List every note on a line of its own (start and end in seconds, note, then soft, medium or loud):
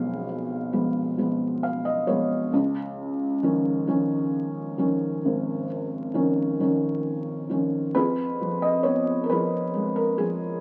0.00 2.48 B1 soft
0.00 0.73 F3 soft
0.00 0.73 G#3 soft
0.00 0.73 B3 soft
0.00 2.03 G#4 soft
0.00 2.53 B4 soft
0.00 1.62 F5 medium
0.73 1.17 F3 soft
0.73 1.17 G#3 soft
0.73 1.18 B3 soft
1.18 2.05 F3 soft
1.18 2.05 G#3 soft
1.18 2.05 B3 soft
1.63 1.83 F5 soft
1.85 2.06 D#5 soft
2.07 2.50 F3 soft
2.07 2.51 G#3 soft
2.07 2.51 B3 soft
2.07 2.49 C#5 soft
2.53 5.19 C#2 medium
3.43 3.86 D#3 soft
3.43 3.86 F3 soft
3.43 3.87 C#4 soft
3.87 4.74 D#3 soft
3.87 4.74 F3 soft
3.87 4.75 C#4 soft
4.78 5.65 D#3 soft
4.78 5.65 F3 soft
4.78 5.66 C#4 soft
5.25 7.92 G#1 soft
6.14 6.58 D#3 soft
6.14 6.59 F3 soft
6.14 6.59 C#4 soft
6.60 7.47 D#3 soft
6.60 7.47 F3 soft
6.60 7.48 C#4 soft
7.49 7.93 D#3 soft
7.49 7.93 F3 soft
7.49 7.94 C#4 soft
7.95 10.61 F2 soft
7.95 9.27 F4 soft
7.95 9.27 G#4 medium
7.95 8.64 B4 medium
8.41 9.29 F3 soft
8.62 8.83 D#5 medium
8.83 10.61 B3 soft
8.83 9.23 C#5 medium
9.24 9.30 A#4 soft
9.29 10.18 F3 soft
9.29 10.61 F4 soft
9.29 10.16 G#4 soft
9.29 9.99 B4 medium
9.75 10.61 G#3 soft
9.96 10.20 A#4 medium
10.18 10.61 F3 soft
10.18 10.61 G#4 medium